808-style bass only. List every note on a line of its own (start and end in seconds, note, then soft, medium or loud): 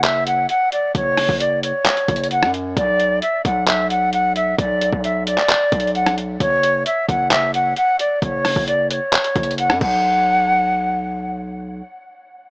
0.00 0.47 F#1 loud
0.95 1.28 F#1 loud
1.29 1.73 F#1 loud
2.08 2.44 F#1 loud
2.43 2.75 F#2 loud
2.77 3.20 B1 loud
3.45 4.54 B1 loud
4.58 4.91 B1 loud
4.93 5.36 B1 loud
5.72 6.38 B1 loud
6.40 6.84 F#1 loud
7.09 7.74 F#1 loud
8.22 8.55 F#1 loud
8.56 9.00 F#1 loud
9.36 9.71 F#1 loud
9.70 9.81 F#2 loud
9.81 11.82 B1 loud